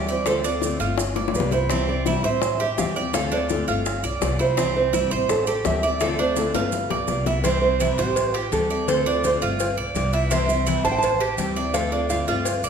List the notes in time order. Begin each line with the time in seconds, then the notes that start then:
Already playing: D2
0.08 G3 C4 E4 C5 D5, maracas
0.26 D3 A3 C4 F4 A4 C5, high bongo, maracas
0.44 A3 C4 D4 F4 D5, high bongo, maracas
0.62 D3 A3 C4 F4, high bongo, maracas
0.80 G1 A3 C4 F4, maracas
0.98 muted steel-string acoustic guitar stroke, high bongo, maracas
1.16 D5, high bongo
1.28 high bongo
1.34 C2 G3 B3 F4 B4, maracas
1.40 low bongo
1.51 B3 E4 F4 C5, low bongo, maracas
1.69 C3 E3 G3 C4 E4, high bongo, maracas
1.87 G3 C4 E4 D5
2.05 C3 E3 G3 C4 E4, high bongo, maracas
2.23 A1 G3 C4 E4 C5 E5, maracas
2.42 muted steel-string acoustic guitar stroke, high bongo, maracas
2.60 G4 E5
2.77 D2 E3 G3 C4 E4 F5, high bongo, low bongo, maracas
2.95 G3 C4 E4 D5 G5, maracas
3.13 D3 A3 C4 F4 A4 F5, high bongo, maracas
3.32 A3 C4 D4 F4 D5, high bongo
3.49 D3 A3 C4 F4, high bongo, maracas
3.68 G1 A3 C4 F4, maracas
3.86 muted steel-string acoustic guitar stroke, high bongo, maracas
4.03 B1 D5, high bongo, maracas
4.21 C2 G3 B3 F4 D5, high bongo, low bongo, maracas
4.39 B3 E4 F4 C5, high bongo, maracas
4.57 C3 E3 G3 C4 E4, high bongo, maracas
4.75 G3 C4 E4 C5
4.93 C3 E3 G3 C4 E4, high bongo, maracas
5.11 A1 G3 C4 E4 C5, maracas
5.29 A4, muted steel-string acoustic guitar stroke, high bongo, maracas
5.47 G4 A4, maracas
5.65 D2 E3 G3 C4 E4 E5, high bongo, low bongo, maracas
5.83 G3 C4 E4 D5 E5, maracas
6.00 D3 A3 C4 F4 A4 D5, high bongo, maracas
6.19 A3 C4 D4 F4 C5, high bongo
6.36 D3 A3 C4 F4 A4, high bongo, maracas
6.54 G1 A3 C4 F4 B4, high bongo, maracas
6.72 muted steel-string acoustic guitar stroke, low bongo, maracas
6.90 B1 D5, low bongo
7.08 C2 G3 B3 F4 D5, low bongo, maracas
7.26 B3 E4 F4, low bongo, maracas
7.43 C3 E3 G3 C4 E4 C5, cowbell, maracas
7.62 G3 C4 E4 C5
7.80 C3 E3 G3 C4 E4, cowbell, maracas
7.98 A1 G3 C4 E4 G4 C5, cowbell, maracas
8.16 muted steel-string acoustic guitar stroke, cowbell, maracas
8.34 G4, cowbell
8.52 D2 E3 G3 C4 E4 A4, cowbell, maracas
8.70 G3 C4 E4 D5, maracas
8.87 D3 A3 C4 F4 A4 C5, cowbell, maracas
9.06 A3 C4 D4 F4
9.23 D3 A3 C4 F4 C5, cowbell, maracas
9.41 G1 A3 C4 F4 D5, maracas
9.60 muted steel-string acoustic guitar stroke, cowbell, maracas
9.77 B1 D5
9.95 C2 G3 B3 F4 D5, cowbell, maracas
10.12 B3 E4 F4, cowbell, maracas
10.31 C3 E3 G3 C4 E4 E5, cowbell, maracas
10.49 G3 C4 E4 E5, maracas
10.66 C3 E3 G3 C4 E4, cowbell, maracas
10.84 A1 G3 C4 E4 C5 A5, cowbell, maracas
10.92 G5
10.98 A5, muted steel-string acoustic guitar stroke
11.03 cowbell, maracas
11.20 G4, cowbell
11.37 D2 E3 G3 C4 E4 G5, cowbell, maracas
11.56 G3 C4 E4 D5, maracas
11.73 D3 A3 C4 F4 A4 F5, cowbell, maracas
11.91 A3 C4 D4 F4
12.09 D3 A3 C4 F4 F5, cowbell, maracas
12.27 G1 A3 C4 F4 D5, maracas
12.45 muted steel-string acoustic guitar stroke, cowbell, maracas
12.63 B1 D5, maracas